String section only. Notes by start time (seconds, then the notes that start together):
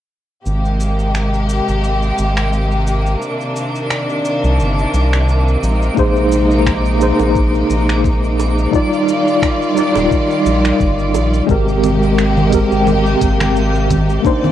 0.45 C3 G#3 A#3 G4
3.22 D#3 D4
5.62 G#3 D#4
8.73 D#3 G3 F4 D5
11.49 C3 G#3 A#3 G4
14.25 D#3 A#3 D5